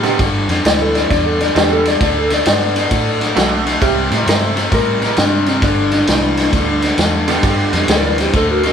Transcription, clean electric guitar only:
Already playing: G4
0.66 D5
0.82 A4
0.95 D5
1.11 D5
1.26 A4
1.41 D5
1.57 D5
1.72 A4
1.88 D5
2.03 D5
2.18 A4
2.34 D5
2.49 D5
4.29 C5
4.75 A#4
5.19 D4
5.49 C4
5.64 D4
7.90 A#4 D5
8.05 A#4 D5
8.21 G4 C5
8.36 A4 C5
8.51 F#4 A#4
8.67 F#4 A#4

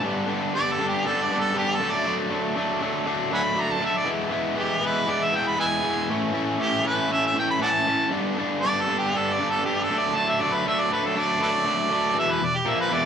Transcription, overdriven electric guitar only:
0.02 G2 D3 G3 B3 D4
0.26 G2 D3 G3 B3 D4
0.54 G2 D3 G3 B3 D4
0.79 G2 D3 G3 B3 D4
1.05 G2 D3 G3 B3 D4
1.30 G2 D3 G3 B3 D4
1.54 G2 D3 G3 B3 D4
1.80 D3 F#3 A3 D4
2.06 D3 F#3 A3 D4
2.30 D3 F#3 A3 D4
2.56 D3 F#3 A3 D4
2.81 D3 F#3 A3 D4
3.06 D3 F#3 A3 D4
3.31 D3 F#3 A3 D4
3.56 D3 F#3 A3 D4
3.80 D3 F#3 A3 D4
4.04 E3 G#3 B3 E4
4.30 E3 G#3 B3 E4
4.55 E3 G#3 B3 E4
4.82 E3 G#3 B3 E4
5.07 E3 G#3 B3 E4
5.32 E3 G#3 B3 E4
5.57 E3 G#3 B3 E4
5.82 E3 G#3 B3 E4
6.09 A2 E3 A3 C#4 E4
6.33 A2 E3 A3 C#4 E4
6.59 A2 E3 A3 C#4 E4
6.83 A2 E3 A3 C#4 E4
7.10 A2 E3 A3 C#4 E4
7.35 A2 E3 A3 C#4 E4
7.60 A2 E3 A3 C#4 E4
7.86 A2 E3 A3 C#4 E4
8.10 G2 D3 G3 B3 D4
8.37 G2 D3 G3 B3 D4
8.63 G2 D3 G3 B3 D4
8.88 G2 D3 G3 B3 D4
9.14 G2 D3 G3 B3 D4
9.38 G2 D3 G3 B3 D4
9.64 G2 D3 G3 B3 D4
9.90 D3 F#3 A3 D4
10.15 D3 F#3 A3 D4
10.40 D3 F#3 A3 D4
10.66 D3 F#3 A3 D4
10.90 D3 F#3 A3 D4
11.15 D3 F#3 A3 D4
11.39 D3 F#3 A3 D4
11.65 D3 F#3 A3 D4
11.90 D3 F#3 A3 D4
12.13 E2 B2 E3
12.40 E2 B2
12.65 A#2 F3 A#3
12.90 E2 B2 E3

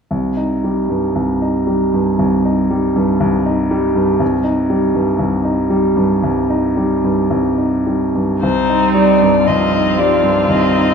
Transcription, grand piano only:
0.11 C2
0.37 D#4
0.64 G3
0.89 G2
1.15 C2
1.42 D#4
1.67 G3
1.94 G2
2.19 C2
2.45 D#4
2.70 G3
2.96 G2
3.20 C2
3.46 D#4
3.71 G3
3.96 G2
4.20 C2
4.44 D#4
4.70 G3
4.95 G2
5.19 C2
5.45 D#4
5.70 G3
5.96 G2
6.23 C2
6.50 D#4
6.77 G3
7.04 G2
7.30 C2
7.58 D#4
7.86 G3
8.15 G2
8.43 C2
8.69 D#4
8.95 G3
9.22 G2
9.48 C2
9.73 D#4
9.98 G3
10.24 G2
10.48 C2
10.75 D#4

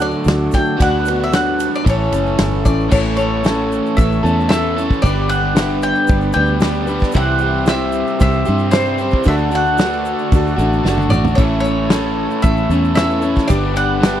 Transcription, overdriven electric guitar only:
Already playing: D3 F#3 A3 D4 F#4
0.77 D3 B3 D4 F#4
1.84 A2 E3 A3 C#4 A4
2.90 A2 E3 A3 C#4 A4
3.18 A3 C#4 A4
3.44 A2 E3 A3 C#4 A4
4.23 A3 C#4 A4
4.50 E3 A3 C#4 A4
4.76 A3 C#4 A4
5.02 G2 D3 G3 B3 D4 G4
5.28 G3 B3 D4 G4
5.55 G2 D3 G3 B3 D4 G4
6.33 G3 B3 D4 G4
6.61 G3 B3 D4 G4
6.87 G3 B3 D4 G4
7.14 C3 E3 G3 C4 G4
7.41 G3 C4 G4
7.68 C3 E3 G3 C4 G4
8.46 G3 C4 G4
8.72 E3 G3 C4 G4
8.98 G3 C4 G4
9.25 D3 A3 D4 F#4
9.51 A3 D4 F#4
9.78 D3 A3 D4 F#4
10.57 A3 D4 F#4
10.84 D3 A3 D4 F#4
11.12 A3 D4 F#4
11.37 A2 E3 A3 C#4 E4
11.64 A3 C#4 E4
11.91 A2 E3 A3 C#4 E4
12.71 A3 C#4 E4
12.96 E3 A3 C#4 E4
13.21 A3 C#4 E4
13.48 G2 D3 G3 B3 D4 G4
13.74 G3 B3 D4 G4
14.00 G2 D3 G3 B3 D4 G4

